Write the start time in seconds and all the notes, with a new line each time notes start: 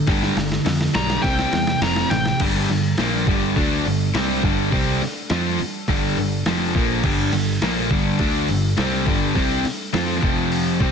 Already playing: G3 D4 A4
0.07 G1 G2 D3 G3, kick, snare, open hi-hat
0.22 snare
0.36 G1 G2 D3, snare, open hi-hat
0.52 snare
0.65 F2 G2 D3, snare, open hi-hat
0.81 snare
0.94 B1 G2 D3 G3 A#5, snare, open hi-hat
1.10 snare
1.23 C2 C3 G3 C4 G4 D5 G5, kick, snare, open hi-hat
1.39 snare
1.52 E2 C3 G3, snare, open hi-hat
1.67 snare
1.82 F1 F2 C3 F3 G4 A#5, snare, open hi-hat
1.96 snare
2.10 A1 F2 C3 G5, snare, open hi-hat
2.26 snare
2.40 G1 G2 D3 G3 D4 A4, kick, open hi-hat, crash
2.69 G1 G2 D3, snare, open hi-hat
2.98 A#1 A#2 F3 A#3, snare, open hi-hat
3.27 G1 G2 D3 G3, kick, open hi-hat
3.56 D2 D3 A3 D4, kick, open hi-hat
3.85 G1 G2 D3, open hi-hat
4.14 C2 C3 G3 C4, snare, open hi-hat
4.43 G1 G2 D3 G3, kick, open hi-hat
4.71 C2 C3 G3 C4, kick, open hi-hat
5.02 muted picked electric bass stroke, muted distorted electric guitar stroke, muted overdriven electric guitar stroke, snare, open hi-hat
5.30 F2 F3 C4 F4, snare, open hi-hat
5.59 muted overdriven electric guitar stroke, muted picked electric bass stroke, muted distorted electric guitar stroke, open hi-hat
5.88 G1 G2 D3 G3, kick, open hi-hat
6.17 G1 G2 D3, open hi-hat
6.46 F1 F2 C3 F3, snare, open hi-hat
6.75 A#1 A#2 F3 A#3, kick, open hi-hat
7.04 G1 G2 D3 G3, kick, crash
7.33 G1 G2 D3, open hi-hat
7.62 A#1 A#2 F3 A#3, snare, open hi-hat
7.90 G1 G2 D3 G3, kick, open hi-hat
8.19 D2 D3 A3 D4, kick, open hi-hat
8.48 G1 G2 D3, open hi-hat
8.77 C2 C3 G3 C4, snare, open hi-hat
9.06 G1 G2 D3 G3, kick, open hi-hat
9.35 C2 C3 G3 C4, kick, open hi-hat
9.64 muted distorted electric guitar stroke, muted overdriven electric guitar stroke, muted picked electric bass stroke, snare, open hi-hat
9.93 F2 F3 C4 F4, snare, open hi-hat
10.22 F1 F2 C3 F3 C4 G4, kick, open hi-hat
10.52 open hi-hat
10.80 C2 C3 G3 C4 D4 A4, kick, open hi-hat